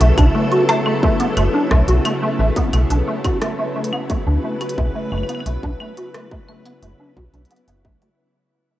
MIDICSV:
0, 0, Header, 1, 5, 480
1, 0, Start_track
1, 0, Tempo, 681818
1, 5, Time_signature, 4, 2, 24, 8
1, 6192, End_track
2, 0, Start_track
2, 0, Title_t, "String machine"
2, 0, Program_c, 0, 50
2, 0, Note_on_c, 0, 49, 81
2, 0, Note_on_c, 0, 54, 74
2, 0, Note_on_c, 0, 59, 73
2, 0, Note_on_c, 0, 64, 84
2, 0, Note_on_c, 0, 69, 82
2, 2578, Note_on_c, 0, 71, 77
2, 2722, Note_off_c, 0, 69, 0
2, 5765, Note_off_c, 0, 49, 0
2, 5765, Note_off_c, 0, 54, 0
2, 5765, Note_off_c, 0, 59, 0
2, 5765, Note_off_c, 0, 64, 0
2, 5765, Note_off_c, 0, 71, 0
2, 6192, End_track
3, 0, Start_track
3, 0, Title_t, "Acid bass"
3, 0, Program_c, 1, 38
3, 5, Note_on_c, 1, 57, 80
3, 58, Note_off_c, 1, 57, 0
3, 125, Note_on_c, 1, 62, 77
3, 177, Note_off_c, 1, 62, 0
3, 244, Note_on_c, 1, 57, 78
3, 332, Note_off_c, 1, 57, 0
3, 364, Note_on_c, 1, 66, 78
3, 452, Note_off_c, 1, 66, 0
3, 484, Note_on_c, 1, 57, 83
3, 572, Note_off_c, 1, 57, 0
3, 604, Note_on_c, 1, 57, 77
3, 657, Note_off_c, 1, 57, 0
3, 724, Note_on_c, 1, 57, 102
3, 839, Note_off_c, 1, 57, 0
3, 844, Note_on_c, 1, 59, 81
3, 897, Note_off_c, 1, 59, 0
3, 964, Note_on_c, 1, 57, 87
3, 1017, Note_off_c, 1, 57, 0
3, 1084, Note_on_c, 1, 62, 78
3, 1172, Note_off_c, 1, 62, 0
3, 1205, Note_on_c, 1, 57, 81
3, 1292, Note_off_c, 1, 57, 0
3, 1324, Note_on_c, 1, 66, 83
3, 1412, Note_off_c, 1, 66, 0
3, 1444, Note_on_c, 1, 57, 85
3, 1497, Note_off_c, 1, 57, 0
3, 1564, Note_on_c, 1, 57, 80
3, 1679, Note_off_c, 1, 57, 0
3, 1684, Note_on_c, 1, 57, 95
3, 1772, Note_off_c, 1, 57, 0
3, 1804, Note_on_c, 1, 59, 77
3, 1892, Note_off_c, 1, 59, 0
3, 1924, Note_on_c, 1, 57, 82
3, 1977, Note_off_c, 1, 57, 0
3, 2044, Note_on_c, 1, 62, 78
3, 2097, Note_off_c, 1, 62, 0
3, 2165, Note_on_c, 1, 57, 77
3, 2253, Note_off_c, 1, 57, 0
3, 2285, Note_on_c, 1, 66, 77
3, 2373, Note_off_c, 1, 66, 0
3, 2405, Note_on_c, 1, 57, 85
3, 2493, Note_off_c, 1, 57, 0
3, 2525, Note_on_c, 1, 57, 80
3, 2578, Note_off_c, 1, 57, 0
3, 2645, Note_on_c, 1, 57, 101
3, 2759, Note_off_c, 1, 57, 0
3, 2765, Note_on_c, 1, 59, 85
3, 2818, Note_off_c, 1, 59, 0
3, 2885, Note_on_c, 1, 57, 86
3, 2938, Note_off_c, 1, 57, 0
3, 3005, Note_on_c, 1, 62, 78
3, 3093, Note_off_c, 1, 62, 0
3, 3125, Note_on_c, 1, 57, 77
3, 3213, Note_off_c, 1, 57, 0
3, 3246, Note_on_c, 1, 66, 84
3, 3333, Note_off_c, 1, 66, 0
3, 3366, Note_on_c, 1, 57, 86
3, 3418, Note_off_c, 1, 57, 0
3, 3486, Note_on_c, 1, 57, 74
3, 3599, Note_off_c, 1, 57, 0
3, 3606, Note_on_c, 1, 57, 101
3, 3693, Note_off_c, 1, 57, 0
3, 3726, Note_on_c, 1, 59, 76
3, 3813, Note_off_c, 1, 59, 0
3, 3846, Note_on_c, 1, 57, 82
3, 3898, Note_off_c, 1, 57, 0
3, 3967, Note_on_c, 1, 62, 77
3, 4018, Note_off_c, 1, 62, 0
3, 4087, Note_on_c, 1, 57, 77
3, 4174, Note_off_c, 1, 57, 0
3, 4206, Note_on_c, 1, 66, 78
3, 4293, Note_off_c, 1, 66, 0
3, 4327, Note_on_c, 1, 57, 83
3, 4413, Note_off_c, 1, 57, 0
3, 4446, Note_on_c, 1, 57, 75
3, 4498, Note_off_c, 1, 57, 0
3, 4566, Note_on_c, 1, 57, 107
3, 4680, Note_off_c, 1, 57, 0
3, 4686, Note_on_c, 1, 59, 83
3, 4738, Note_off_c, 1, 59, 0
3, 4806, Note_on_c, 1, 57, 86
3, 4858, Note_off_c, 1, 57, 0
3, 4926, Note_on_c, 1, 62, 81
3, 5013, Note_off_c, 1, 62, 0
3, 5046, Note_on_c, 1, 66, 79
3, 5098, Note_off_c, 1, 66, 0
3, 5166, Note_on_c, 1, 62, 108
3, 5218, Note_off_c, 1, 62, 0
3, 5286, Note_on_c, 1, 59, 84
3, 5400, Note_off_c, 1, 59, 0
3, 5406, Note_on_c, 1, 59, 106
3, 5458, Note_off_c, 1, 59, 0
3, 5525, Note_on_c, 1, 57, 74
3, 5639, Note_off_c, 1, 57, 0
3, 5645, Note_on_c, 1, 57, 79
3, 5698, Note_off_c, 1, 57, 0
3, 6192, End_track
4, 0, Start_track
4, 0, Title_t, "FM bass"
4, 0, Program_c, 2, 39
4, 4, Note_on_c, 2, 35, 102
4, 81, Note_off_c, 2, 35, 0
4, 124, Note_on_c, 2, 35, 83
4, 201, Note_off_c, 2, 35, 0
4, 964, Note_on_c, 2, 30, 91
4, 1041, Note_off_c, 2, 30, 0
4, 1205, Note_on_c, 2, 35, 93
4, 1282, Note_off_c, 2, 35, 0
4, 1324, Note_on_c, 2, 35, 85
4, 1401, Note_off_c, 2, 35, 0
4, 1684, Note_on_c, 2, 33, 94
4, 1761, Note_off_c, 2, 33, 0
4, 1924, Note_on_c, 2, 35, 102
4, 2001, Note_off_c, 2, 35, 0
4, 2044, Note_on_c, 2, 35, 81
4, 2121, Note_off_c, 2, 35, 0
4, 3004, Note_on_c, 2, 38, 84
4, 3082, Note_off_c, 2, 38, 0
4, 3365, Note_on_c, 2, 35, 98
4, 3442, Note_off_c, 2, 35, 0
4, 3604, Note_on_c, 2, 30, 106
4, 3681, Note_off_c, 2, 30, 0
4, 3844, Note_on_c, 2, 35, 102
4, 3921, Note_off_c, 2, 35, 0
4, 3965, Note_on_c, 2, 35, 82
4, 4042, Note_off_c, 2, 35, 0
4, 4805, Note_on_c, 2, 30, 88
4, 4882, Note_off_c, 2, 30, 0
4, 5045, Note_on_c, 2, 35, 89
4, 5122, Note_off_c, 2, 35, 0
4, 5166, Note_on_c, 2, 35, 82
4, 5242, Note_off_c, 2, 35, 0
4, 5405, Note_on_c, 2, 30, 88
4, 5525, Note_on_c, 2, 33, 95
4, 5536, Note_off_c, 2, 30, 0
4, 5602, Note_off_c, 2, 33, 0
4, 6192, End_track
5, 0, Start_track
5, 0, Title_t, "Drums"
5, 4, Note_on_c, 9, 42, 63
5, 75, Note_off_c, 9, 42, 0
5, 124, Note_on_c, 9, 42, 37
5, 124, Note_on_c, 9, 75, 77
5, 125, Note_on_c, 9, 36, 118
5, 195, Note_off_c, 9, 36, 0
5, 195, Note_off_c, 9, 42, 0
5, 195, Note_off_c, 9, 75, 0
5, 364, Note_on_c, 9, 42, 52
5, 434, Note_off_c, 9, 42, 0
5, 484, Note_on_c, 9, 37, 114
5, 484, Note_on_c, 9, 42, 64
5, 555, Note_off_c, 9, 37, 0
5, 555, Note_off_c, 9, 42, 0
5, 604, Note_on_c, 9, 75, 51
5, 675, Note_off_c, 9, 75, 0
5, 725, Note_on_c, 9, 36, 100
5, 795, Note_off_c, 9, 36, 0
5, 844, Note_on_c, 9, 42, 52
5, 915, Note_off_c, 9, 42, 0
5, 964, Note_on_c, 9, 42, 61
5, 964, Note_on_c, 9, 75, 49
5, 1035, Note_off_c, 9, 42, 0
5, 1035, Note_off_c, 9, 75, 0
5, 1204, Note_on_c, 9, 37, 110
5, 1205, Note_on_c, 9, 36, 111
5, 1275, Note_off_c, 9, 36, 0
5, 1275, Note_off_c, 9, 37, 0
5, 1324, Note_on_c, 9, 42, 49
5, 1395, Note_off_c, 9, 42, 0
5, 1444, Note_on_c, 9, 42, 65
5, 1444, Note_on_c, 9, 75, 85
5, 1515, Note_off_c, 9, 42, 0
5, 1515, Note_off_c, 9, 75, 0
5, 1804, Note_on_c, 9, 42, 48
5, 1805, Note_on_c, 9, 36, 99
5, 1875, Note_off_c, 9, 36, 0
5, 1875, Note_off_c, 9, 42, 0
5, 1924, Note_on_c, 9, 42, 63
5, 1924, Note_on_c, 9, 75, 55
5, 1995, Note_off_c, 9, 42, 0
5, 1995, Note_off_c, 9, 75, 0
5, 2044, Note_on_c, 9, 42, 37
5, 2115, Note_off_c, 9, 42, 0
5, 2284, Note_on_c, 9, 42, 52
5, 2284, Note_on_c, 9, 75, 55
5, 2285, Note_on_c, 9, 36, 108
5, 2354, Note_off_c, 9, 42, 0
5, 2354, Note_off_c, 9, 75, 0
5, 2355, Note_off_c, 9, 36, 0
5, 2404, Note_on_c, 9, 37, 109
5, 2404, Note_on_c, 9, 42, 64
5, 2474, Note_off_c, 9, 37, 0
5, 2474, Note_off_c, 9, 42, 0
5, 2704, Note_on_c, 9, 42, 55
5, 2764, Note_on_c, 9, 75, 86
5, 2774, Note_off_c, 9, 42, 0
5, 2835, Note_off_c, 9, 75, 0
5, 2884, Note_on_c, 9, 42, 60
5, 2885, Note_on_c, 9, 36, 101
5, 2955, Note_off_c, 9, 36, 0
5, 2955, Note_off_c, 9, 42, 0
5, 3245, Note_on_c, 9, 42, 53
5, 3245, Note_on_c, 9, 75, 56
5, 3305, Note_off_c, 9, 42, 0
5, 3305, Note_on_c, 9, 42, 67
5, 3315, Note_off_c, 9, 75, 0
5, 3365, Note_on_c, 9, 36, 114
5, 3375, Note_off_c, 9, 42, 0
5, 3436, Note_off_c, 9, 36, 0
5, 3605, Note_on_c, 9, 75, 26
5, 3645, Note_off_c, 9, 75, 0
5, 3645, Note_on_c, 9, 75, 30
5, 3685, Note_off_c, 9, 75, 0
5, 3685, Note_on_c, 9, 75, 33
5, 3725, Note_off_c, 9, 75, 0
5, 3725, Note_on_c, 9, 42, 54
5, 3725, Note_on_c, 9, 75, 39
5, 3765, Note_off_c, 9, 75, 0
5, 3765, Note_on_c, 9, 75, 43
5, 3795, Note_off_c, 9, 42, 0
5, 3805, Note_off_c, 9, 75, 0
5, 3805, Note_on_c, 9, 75, 46
5, 3845, Note_on_c, 9, 42, 66
5, 3875, Note_off_c, 9, 75, 0
5, 3915, Note_off_c, 9, 42, 0
5, 3965, Note_on_c, 9, 36, 107
5, 4035, Note_off_c, 9, 36, 0
5, 4084, Note_on_c, 9, 75, 88
5, 4155, Note_off_c, 9, 75, 0
5, 4205, Note_on_c, 9, 42, 54
5, 4275, Note_off_c, 9, 42, 0
5, 4325, Note_on_c, 9, 37, 120
5, 4325, Note_on_c, 9, 42, 66
5, 4395, Note_off_c, 9, 37, 0
5, 4395, Note_off_c, 9, 42, 0
5, 4445, Note_on_c, 9, 36, 113
5, 4515, Note_off_c, 9, 36, 0
5, 4565, Note_on_c, 9, 75, 57
5, 4635, Note_off_c, 9, 75, 0
5, 4684, Note_on_c, 9, 42, 55
5, 4755, Note_off_c, 9, 42, 0
5, 4805, Note_on_c, 9, 42, 62
5, 4875, Note_off_c, 9, 42, 0
5, 5045, Note_on_c, 9, 36, 102
5, 5116, Note_off_c, 9, 36, 0
5, 5165, Note_on_c, 9, 42, 25
5, 5235, Note_off_c, 9, 42, 0
5, 5245, Note_on_c, 9, 42, 34
5, 5284, Note_off_c, 9, 42, 0
5, 5284, Note_on_c, 9, 42, 69
5, 5325, Note_off_c, 9, 42, 0
5, 5325, Note_on_c, 9, 42, 43
5, 5395, Note_off_c, 9, 42, 0
5, 5405, Note_on_c, 9, 42, 39
5, 5475, Note_off_c, 9, 42, 0
5, 5525, Note_on_c, 9, 36, 117
5, 5596, Note_off_c, 9, 36, 0
5, 5645, Note_on_c, 9, 42, 56
5, 5716, Note_off_c, 9, 42, 0
5, 6192, End_track
0, 0, End_of_file